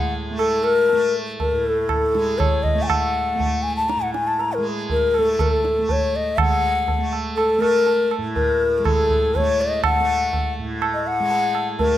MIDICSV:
0, 0, Header, 1, 4, 480
1, 0, Start_track
1, 0, Tempo, 499584
1, 2784, Time_signature, 7, 2, 24, 8
1, 6133, Tempo, 491803
1, 11593, End_track
2, 0, Start_track
2, 0, Title_t, "Bansuri"
2, 0, Program_c, 0, 73
2, 0, Note_on_c, 0, 78, 98
2, 131, Note_off_c, 0, 78, 0
2, 370, Note_on_c, 0, 69, 89
2, 611, Note_on_c, 0, 70, 108
2, 626, Note_off_c, 0, 69, 0
2, 1097, Note_off_c, 0, 70, 0
2, 1345, Note_on_c, 0, 70, 72
2, 1605, Note_off_c, 0, 70, 0
2, 1605, Note_on_c, 0, 69, 72
2, 1819, Note_off_c, 0, 69, 0
2, 1819, Note_on_c, 0, 69, 84
2, 2291, Note_on_c, 0, 73, 81
2, 2305, Note_off_c, 0, 69, 0
2, 2527, Note_on_c, 0, 75, 79
2, 2541, Note_off_c, 0, 73, 0
2, 2714, Note_on_c, 0, 80, 58
2, 2728, Note_off_c, 0, 75, 0
2, 2763, Note_on_c, 0, 78, 88
2, 2778, Note_off_c, 0, 80, 0
2, 3485, Note_on_c, 0, 80, 90
2, 3500, Note_off_c, 0, 78, 0
2, 3611, Note_off_c, 0, 80, 0
2, 3616, Note_on_c, 0, 81, 88
2, 3736, Note_on_c, 0, 82, 89
2, 3750, Note_off_c, 0, 81, 0
2, 3855, Note_on_c, 0, 78, 64
2, 3869, Note_off_c, 0, 82, 0
2, 3968, Note_off_c, 0, 78, 0
2, 3974, Note_on_c, 0, 80, 93
2, 4106, Note_on_c, 0, 81, 84
2, 4120, Note_off_c, 0, 80, 0
2, 4230, Note_on_c, 0, 82, 83
2, 4245, Note_off_c, 0, 81, 0
2, 4353, Note_on_c, 0, 70, 66
2, 4367, Note_off_c, 0, 82, 0
2, 4468, Note_off_c, 0, 70, 0
2, 4721, Note_on_c, 0, 70, 74
2, 4971, Note_off_c, 0, 70, 0
2, 4971, Note_on_c, 0, 69, 74
2, 5198, Note_on_c, 0, 70, 80
2, 5212, Note_off_c, 0, 69, 0
2, 5303, Note_off_c, 0, 70, 0
2, 5303, Note_on_c, 0, 69, 80
2, 5680, Note_on_c, 0, 73, 82
2, 5694, Note_off_c, 0, 69, 0
2, 5919, Note_on_c, 0, 75, 84
2, 5933, Note_off_c, 0, 73, 0
2, 6149, Note_on_c, 0, 78, 107
2, 6163, Note_off_c, 0, 75, 0
2, 6866, Note_off_c, 0, 78, 0
2, 7088, Note_on_c, 0, 69, 99
2, 7326, Note_on_c, 0, 70, 118
2, 7341, Note_off_c, 0, 69, 0
2, 7815, Note_off_c, 0, 70, 0
2, 8058, Note_on_c, 0, 70, 75
2, 8471, Note_off_c, 0, 70, 0
2, 8471, Note_on_c, 0, 70, 59
2, 8539, Note_on_c, 0, 69, 87
2, 8554, Note_off_c, 0, 70, 0
2, 9033, Note_on_c, 0, 73, 96
2, 9048, Note_off_c, 0, 69, 0
2, 9284, Note_on_c, 0, 75, 86
2, 9299, Note_off_c, 0, 73, 0
2, 9504, Note_off_c, 0, 75, 0
2, 9510, Note_on_c, 0, 78, 115
2, 10185, Note_off_c, 0, 78, 0
2, 10578, Note_on_c, 0, 75, 78
2, 10708, Note_on_c, 0, 78, 99
2, 10722, Note_off_c, 0, 75, 0
2, 11299, Note_off_c, 0, 78, 0
2, 11412, Note_on_c, 0, 70, 82
2, 11593, Note_off_c, 0, 70, 0
2, 11593, End_track
3, 0, Start_track
3, 0, Title_t, "Tanpura"
3, 0, Program_c, 1, 104
3, 0, Note_on_c, 1, 45, 59
3, 0, Note_on_c, 1, 56, 48
3, 0, Note_on_c, 1, 57, 49
3, 294, Note_off_c, 1, 57, 0
3, 294, Note_on_c, 1, 57, 53
3, 886, Note_off_c, 1, 57, 0
3, 886, Note_on_c, 1, 57, 60
3, 1454, Note_off_c, 1, 45, 0
3, 1458, Note_on_c, 1, 45, 53
3, 2053, Note_off_c, 1, 56, 0
3, 2057, Note_on_c, 1, 56, 53
3, 2640, Note_off_c, 1, 57, 0
3, 2640, Note_on_c, 1, 57, 52
3, 3220, Note_off_c, 1, 57, 0
3, 3220, Note_on_c, 1, 57, 55
3, 3806, Note_off_c, 1, 45, 0
3, 3809, Note_on_c, 1, 45, 52
3, 4394, Note_off_c, 1, 56, 0
3, 4398, Note_on_c, 1, 56, 50
3, 4980, Note_off_c, 1, 57, 0
3, 4980, Note_on_c, 1, 57, 47
3, 5557, Note_off_c, 1, 57, 0
3, 5557, Note_on_c, 1, 57, 49
3, 6118, Note_off_c, 1, 56, 0
3, 6122, Note_on_c, 1, 56, 52
3, 6716, Note_off_c, 1, 57, 0
3, 6716, Note_on_c, 1, 57, 51
3, 7302, Note_off_c, 1, 57, 0
3, 7302, Note_on_c, 1, 57, 60
3, 7884, Note_off_c, 1, 45, 0
3, 7887, Note_on_c, 1, 45, 57
3, 8484, Note_off_c, 1, 56, 0
3, 8488, Note_on_c, 1, 56, 56
3, 9070, Note_off_c, 1, 57, 0
3, 9070, Note_on_c, 1, 57, 55
3, 9662, Note_off_c, 1, 57, 0
3, 9662, Note_on_c, 1, 57, 62
3, 10234, Note_off_c, 1, 45, 0
3, 10238, Note_on_c, 1, 45, 53
3, 10829, Note_off_c, 1, 56, 0
3, 10833, Note_on_c, 1, 56, 51
3, 11415, Note_off_c, 1, 57, 0
3, 11415, Note_on_c, 1, 57, 58
3, 11593, Note_off_c, 1, 45, 0
3, 11593, Note_off_c, 1, 56, 0
3, 11593, Note_off_c, 1, 57, 0
3, 11593, End_track
4, 0, Start_track
4, 0, Title_t, "Tabla"
4, 376, Note_on_c, 9, 60, 70
4, 472, Note_off_c, 9, 60, 0
4, 616, Note_on_c, 9, 60, 55
4, 712, Note_off_c, 9, 60, 0
4, 857, Note_on_c, 9, 63, 68
4, 953, Note_off_c, 9, 63, 0
4, 1345, Note_on_c, 9, 63, 71
4, 1345, Note_on_c, 9, 64, 60
4, 1441, Note_off_c, 9, 63, 0
4, 1441, Note_off_c, 9, 64, 0
4, 1817, Note_on_c, 9, 60, 67
4, 1817, Note_on_c, 9, 64, 60
4, 1913, Note_off_c, 9, 60, 0
4, 1913, Note_off_c, 9, 64, 0
4, 2062, Note_on_c, 9, 62, 52
4, 2158, Note_off_c, 9, 62, 0
4, 2306, Note_on_c, 9, 60, 70
4, 2306, Note_on_c, 9, 64, 62
4, 2402, Note_off_c, 9, 60, 0
4, 2402, Note_off_c, 9, 64, 0
4, 2542, Note_on_c, 9, 64, 50
4, 2638, Note_off_c, 9, 64, 0
4, 2783, Note_on_c, 9, 60, 89
4, 2783, Note_on_c, 9, 64, 82
4, 2879, Note_off_c, 9, 60, 0
4, 2879, Note_off_c, 9, 64, 0
4, 3266, Note_on_c, 9, 63, 68
4, 3266, Note_on_c, 9, 64, 66
4, 3362, Note_off_c, 9, 63, 0
4, 3362, Note_off_c, 9, 64, 0
4, 3743, Note_on_c, 9, 62, 71
4, 3839, Note_off_c, 9, 62, 0
4, 3981, Note_on_c, 9, 62, 57
4, 4077, Note_off_c, 9, 62, 0
4, 4221, Note_on_c, 9, 63, 70
4, 4317, Note_off_c, 9, 63, 0
4, 4704, Note_on_c, 9, 63, 61
4, 4704, Note_on_c, 9, 64, 64
4, 4800, Note_off_c, 9, 63, 0
4, 4800, Note_off_c, 9, 64, 0
4, 4940, Note_on_c, 9, 60, 52
4, 5037, Note_off_c, 9, 60, 0
4, 5181, Note_on_c, 9, 60, 65
4, 5181, Note_on_c, 9, 64, 57
4, 5277, Note_off_c, 9, 60, 0
4, 5277, Note_off_c, 9, 64, 0
4, 5423, Note_on_c, 9, 62, 48
4, 5519, Note_off_c, 9, 62, 0
4, 5659, Note_on_c, 9, 63, 68
4, 5659, Note_on_c, 9, 64, 63
4, 5755, Note_off_c, 9, 63, 0
4, 5755, Note_off_c, 9, 64, 0
4, 6132, Note_on_c, 9, 60, 95
4, 6132, Note_on_c, 9, 64, 85
4, 6230, Note_off_c, 9, 60, 0
4, 6230, Note_off_c, 9, 64, 0
4, 6618, Note_on_c, 9, 63, 74
4, 6618, Note_on_c, 9, 64, 68
4, 6715, Note_off_c, 9, 63, 0
4, 6715, Note_off_c, 9, 64, 0
4, 6859, Note_on_c, 9, 60, 59
4, 6957, Note_off_c, 9, 60, 0
4, 7102, Note_on_c, 9, 60, 71
4, 7199, Note_off_c, 9, 60, 0
4, 7341, Note_on_c, 9, 60, 58
4, 7439, Note_off_c, 9, 60, 0
4, 7580, Note_on_c, 9, 63, 67
4, 7678, Note_off_c, 9, 63, 0
4, 7821, Note_on_c, 9, 60, 52
4, 7919, Note_off_c, 9, 60, 0
4, 8062, Note_on_c, 9, 63, 64
4, 8062, Note_on_c, 9, 64, 68
4, 8159, Note_off_c, 9, 63, 0
4, 8159, Note_off_c, 9, 64, 0
4, 8545, Note_on_c, 9, 60, 67
4, 8545, Note_on_c, 9, 64, 64
4, 8642, Note_off_c, 9, 60, 0
4, 8642, Note_off_c, 9, 64, 0
4, 8782, Note_on_c, 9, 64, 52
4, 8879, Note_off_c, 9, 64, 0
4, 9028, Note_on_c, 9, 63, 79
4, 9028, Note_on_c, 9, 64, 72
4, 9125, Note_off_c, 9, 63, 0
4, 9125, Note_off_c, 9, 64, 0
4, 9503, Note_on_c, 9, 60, 106
4, 9503, Note_on_c, 9, 64, 89
4, 9600, Note_off_c, 9, 60, 0
4, 9600, Note_off_c, 9, 64, 0
4, 9986, Note_on_c, 9, 63, 77
4, 9986, Note_on_c, 9, 64, 71
4, 10084, Note_off_c, 9, 63, 0
4, 10084, Note_off_c, 9, 64, 0
4, 10462, Note_on_c, 9, 60, 79
4, 10560, Note_off_c, 9, 60, 0
4, 10935, Note_on_c, 9, 63, 75
4, 11033, Note_off_c, 9, 63, 0
4, 11173, Note_on_c, 9, 60, 52
4, 11271, Note_off_c, 9, 60, 0
4, 11412, Note_on_c, 9, 63, 77
4, 11412, Note_on_c, 9, 64, 64
4, 11510, Note_off_c, 9, 63, 0
4, 11510, Note_off_c, 9, 64, 0
4, 11593, End_track
0, 0, End_of_file